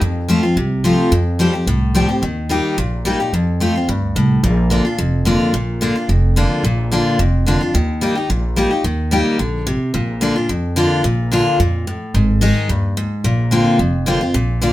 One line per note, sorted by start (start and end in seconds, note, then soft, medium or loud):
0.01 0.37 F2 loud
0.01 0.54 F2 medium
0.28 0.43 F3 medium
0.28 0.43 A3 medium
0.28 0.43 C4 loud
0.28 0.42 F4 loud
0.43 0.57 C4 soft
0.43 0.56 F4 medium
0.56 0.92 C2 medium
0.56 1.09 C3 medium
0.84 1.10 F3 medium
0.84 1.11 A3 medium
0.84 1.11 C4 medium
0.84 1.11 F4 loud
1.11 1.48 F2 medium
1.11 1.64 F2 loud
1.39 1.53 F3 medium
1.39 1.53 G3 medium
1.39 1.54 C4 medium
1.39 1.52 G4 loud
1.53 1.67 C4 soft
1.53 1.66 G4 soft
1.66 2.03 C2 medium
1.66 2.20 A2 loud
1.95 2.08 F3 loud
1.95 2.09 G3 loud
1.95 2.09 C4 medium
1.95 2.07 G4 loud
2.09 2.22 C4 soft
2.09 2.21 G4 medium
2.22 2.58 D#2 loud
2.22 2.75 D#3 medium
2.49 2.76 G3 medium
2.49 2.76 A#3 medium
2.49 2.77 D#4 medium
2.49 2.77 G4 medium
2.77 3.14 A#1 medium
2.77 3.30 A#2 medium
3.05 3.19 G3 loud
3.05 3.19 A#3 medium
3.05 3.20 D#4 loud
3.05 3.19 G4 medium
3.20 3.33 D#4 medium
3.20 3.32 G4 medium
3.33 3.69 F2 medium
3.33 3.86 F2 medium
3.60 3.74 F3 medium
3.60 3.75 A3 loud
3.60 3.75 C4 medium
3.60 3.74 F4 loud
3.75 3.89 C4 soft
3.75 3.88 F4 medium
3.88 4.11 D2 medium
3.88 4.15 G2 medium
4.16 4.39 C2 medium
4.16 4.42 A2 medium
4.43 4.79 A#1 loud
4.43 4.96 A#2 loud
4.70 4.84 D3 medium
4.70 4.85 A#3 medium
4.70 4.85 D4 medium
4.70 4.83 F4 medium
4.85 4.98 D4 soft
4.85 4.98 F4 medium
4.98 5.35 F1 medium
4.98 5.51 F2 medium
5.25 5.52 D3 medium
5.25 5.52 A#3 loud
5.25 5.53 D4 loud
5.25 5.53 F4 loud
5.53 5.90 A#1 medium
5.53 6.06 A#2 medium
5.81 5.95 D3 medium
5.81 5.95 A#3 medium
5.81 5.95 D4 medium
5.81 5.94 F4 loud
5.95 6.09 D4 soft
5.95 6.08 F4 medium
6.09 6.45 F1 medium
6.09 6.61 F2 medium
6.36 6.63 D3 medium
6.36 6.63 A#3 loud
6.36 6.63 D4 medium
6.36 6.63 F4 loud
6.63 7.00 A#1 loud
6.63 7.17 A#2 loud
6.91 7.18 D3 medium
6.91 7.18 A#3 medium
6.91 7.18 D4 loud
6.91 7.19 F4 loud
7.19 7.55 F1 medium
7.19 7.72 F2 loud
7.46 7.60 D3 medium
7.46 7.61 A#3 medium
7.46 7.61 D4 loud
7.46 7.60 F4 loud
7.61 7.74 D4 medium
7.61 7.73 F4 medium
7.74 8.10 D#2 loud
7.74 8.27 D#3 loud
8.01 8.15 G3 medium
8.01 8.16 A#3 loud
8.01 8.16 D#4 medium
8.01 8.14 G4 medium
8.15 8.29 D#4 soft
8.15 8.28 G4 medium
8.29 8.65 A#1 medium
8.29 8.82 A#2 medium
8.56 8.70 G3 loud
8.56 8.71 A#3 medium
8.56 8.71 D#4 medium
8.56 8.69 G4 loud
8.71 8.84 D#4 soft
8.71 8.83 G4 medium
8.84 9.20 D#2 loud
8.84 9.37 D#3 medium
9.11 9.38 G3 medium
9.11 9.38 A#3 medium
9.11 9.38 D#4 loud
9.11 9.39 G4 loud
9.39 9.75 A#1 medium
9.39 9.65 D3 medium
9.67 9.93 C3 loud
9.94 10.30 A#1 loud
9.94 10.46 A#2 loud
10.21 10.35 D3 loud
10.21 10.36 A#3 medium
10.21 10.36 D4 loud
10.21 10.35 F4 loud
10.36 10.50 D4 soft
10.36 10.49 F4 medium
10.49 10.85 F2 medium
10.49 11.02 F2 medium
10.76 11.03 D3 loud
10.76 11.03 A#3 loud
10.76 11.03 D4 loud
10.76 11.04 F4 loud
11.04 11.40 A#1 loud
11.04 11.57 A#2 loud
11.32 11.58 D3 medium
11.32 11.58 A#3 medium
11.32 11.58 D4 medium
11.32 11.59 F4 loud
11.59 11.95 F2 medium
11.59 11.86 A#2 medium
11.87 12.13 A2 medium
12.14 12.50 G#1 loud
12.14 12.67 G#2 medium
12.41 12.68 D#3 medium
12.41 12.68 G#3 loud
12.41 12.68 D#4 loud
12.41 12.69 G#4 loud
12.69 13.05 D#2 medium
12.69 12.96 G2 medium
12.97 13.23 G#2 medium
13.24 13.60 A#1 loud
13.24 13.77 A#2 loud
13.51 13.78 D3 medium
13.51 13.78 A#3 medium
13.51 13.78 C4 loud
13.51 13.79 F4 loud
13.79 14.15 F1 medium
13.79 14.32 F2 medium
14.06 14.20 D3 medium
14.06 14.21 A#3 loud
14.06 14.21 C4 medium
14.06 14.20 F4 loud
14.21 14.35 C4 soft
14.21 14.34 F4 medium
14.34 14.70 A#1 loud
14.34 14.73 A#2 loud
14.61 14.73 D3 medium
14.61 14.73 A#3 medium
14.61 14.73 D4 loud
14.61 14.73 F4 loud